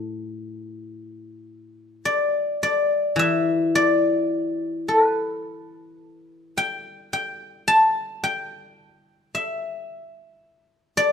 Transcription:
Already playing: A2 A4
2.05 D5
2.63 D5
3.16 E3 E5
3.75 D5
4.88 B4
6.58 G5
7.13 G5
7.68 A5
8.24 G5
9.35 E5
10.97 D5

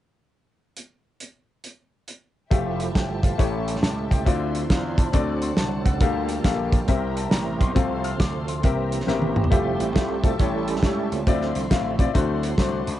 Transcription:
0.77 closed hi-hat
1.20 closed hi-hat
1.64 closed hi-hat
2.08 closed hi-hat
2.50 F1 F3 A3 E4 F4 G4 C5 E5 G5 A5, kick, closed hi-hat
2.80 closed hi-hat
2.95 G1 G5, kick, snare, closed hi-hat
3.23 F5, kick, closed hi-hat
3.38 A1 A2 A3 C#4 E4 G4 C#5 E5, kick, closed hi-hat
3.68 closed hi-hat
3.75 snare
3.82 C#2 A5, snare, closed hi-hat
4.11 C#2 G5, kick, closed hi-hat
4.25 D2 D3 C4 D4 E4 F4 C5 D5 C6, kick, closed hi-hat
4.55 closed hi-hat
4.70 E2 F5, kick, snare, closed hi-hat
4.98 A5, kick, closed hi-hat
5.12 D2 D3 F#3 C4 D4 F#4 A4 C5 D5 F#5 A5, kick, closed hi-hat
5.42 C6, closed hi-hat
5.57 C2 A5, snare, closed hi-hat
5.86 C#2 F#5, kick, closed hi-hat
6.01 D2 D3 G3 A#3 F4 G4 A4 F5 G5, kick, closed hi-hat
6.29 closed hi-hat
6.44 A#1 A#3 G4 A4 F5, kick, snare, closed hi-hat
6.72 kick, closed hi-hat
6.87 C2 C3 C4 E4 G4 A#4 C5 E5 A#5, kick, closed hi-hat
7.17 A5, closed hi-hat
7.31 A1 A#5, snare, closed hi-hat
7.60 B1 C6, kick, closed hi-hat
7.74 C2 C3 F3 A3 C4 F4 A4 F5 A5 C6, kick, closed hi-hat
8.04 F6, closed hi-hat
8.20 D2 D6, kick, snare, closed hi-hat
8.48 C6, closed hi-hat
8.63 C2 C3 E3 A#3 C4 G4 A#4 E5 G5 A#5, kick, closed hi-hat
8.92 closed hi-hat
9.00 snare
9.07 A1 C4 G4 A#4 E5, snare
9.22 high tom
9.36 mid tom
9.44 floor tom
9.50 F1 G3 A3 C4 E4 F4 G4 C5 E5 G5 A5, kick, closed hi-hat
9.80 A1, closed hi-hat
9.95 C2 A3 F4 G4 E5, kick, snare, closed hi-hat
10.23 A3 F4 G4 A4, kick, closed hi-hat
10.39 A1 A2 G3 A3 C#4 E4 G4 A4 C#5, kick, closed hi-hat
10.68 closed hi-hat
10.76 snare
10.83 C#2 A3 E4 G4 C#5, kick, snare, closed hi-hat
11.12 C#2 A3 C4 F4, closed hi-hat
11.27 D2 D3 F3 C4 E4 F4 C5 D5 E5 C6, kick, closed hi-hat
11.41 snare
11.55 C2, closed hi-hat
11.70 A1 C4 E4 F4 F5, kick, snare, closed hi-hat
11.98 C4 E4 F4 D5, kick, closed hi-hat
12.14 D2 D3 F#3 A3 C4 D4 E4 F#4 C5 F#5 A5 C6, kick, closed hi-hat
12.43 closed hi-hat
12.58 C2 A3 D4 F#4 C5, kick, snare, closed hi-hat
12.87 C#2, closed hi-hat

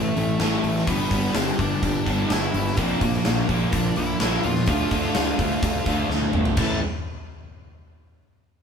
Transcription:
Already playing: A2 E3 A3 C4 E4 A4
0.16 A1 A2 E3 C4 E4 A4, open hi-hat
0.40 A1 A2 E3 A3 C4 E4 A4, snare, open hi-hat
0.64 A1 A2 E3 C4 E4 A4, open hi-hat
0.76 snare
0.87 G1 G2 D3 G3 B3 D4 G4 B4, kick, open hi-hat
1.11 G1 G2 D3 G3 B3 D4 G4, kick, open hi-hat
1.24 snare
1.34 G1 G2 D3 G3 B3 C4 D4 G4 C5, snare, open hi-hat
1.58 G1 G2 D3 G3 B3 D4 G4 D5, kick, open hi-hat
1.81 G1 G2 D3 G3 B3 D4 G4, kick, open hi-hat
2.05 G1 G2 D3 G3 B3 D4 G4, kick, open hi-hat
2.29 G1 G2 D3 G3 B3 D4 E4 G4 E5, snare, open hi-hat
2.54 G1 G2 D3 G3 B3 D4 G4, open hi-hat
2.67 snare
2.77 A#1 A#2 D3 F3 A#3 C4 D4 F4 C5, kick, open hi-hat
3.01 A#1 A#2 F3 A#3 D4 F4 A#4, kick, open hi-hat
3.13 snare
3.25 A#1 A#2 D3 F3 A#3 D4 F4, snare, open hi-hat
3.49 A#1 A#2 F3 A#3 D4 F4, kick, open hi-hat
3.72 A#1 A#2 D3 F3 A#3 D4 F4 D5, kick, open hi-hat
3.96 A#1 A#2 D3 F3 A#3 D4 E4 E5, open hi-hat
4.20 A#1 A#2 D3 F3 A#3 D4, snare, open hi-hat
4.24 F4
4.43 E2 A#2 F3 D4 F4 F5, open hi-hat
4.47 A#3
4.55 snare
4.66 D2 D3 A3 F4 F5, kick, open hi-hat
4.71 D4 F4
4.91 D2 D3 D4 F4, kick, open hi-hat
4.95 A3
5.03 snare
5.15 D2 D3 A3 D4 F4, snare, open hi-hat
5.38 D2 D3 D4 F4, kick, open hi-hat
5.43 A3
5.62 D2 D3 A3 D4 F4, kick, open hi-hat
5.86 D2 D3 A3 D4 F4, kick, open hi-hat
6.08 D2 D3 A3 D4, snare
6.13 F4
6.21 high tom
6.32 G1 D3 D4 F4, mid tom
6.36 A3
6.45 floor tom
6.57 A1 A2 E3 A3 C4 E4 A5, kick, crash

